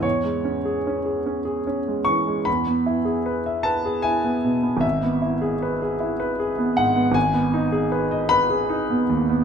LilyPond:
\new Staff \with { instrumentName = "Grand piano" } { \time 3/4 \key e \major \tempo 4 = 76 << { cis''2 r8 cis'''8 | b''4. a''8 gis''4 | e''2 r8 fis''8 | \key gis \phrygian gis''4. b''4. | } \\ { e,16 gis16 cis'16 gis'16 cis'16 gis'16 cis'16 gis'16 cis'16 gis16 e16 gis16 | e,16 b16 e'16 gis'16 b'16 e''16 b'16 gis'16 e'16 b16 b,16 b16 | gis,,16 b16 e'16 gis'16 b'16 gis'16 e'16 b'16 gis'16 b16 gis,16 b16 | gis,,16 b16 dis'16 gis'16 b'16 dis''16 b'16 gis'16 dis'16 b16 dis,16 b16 | } >> }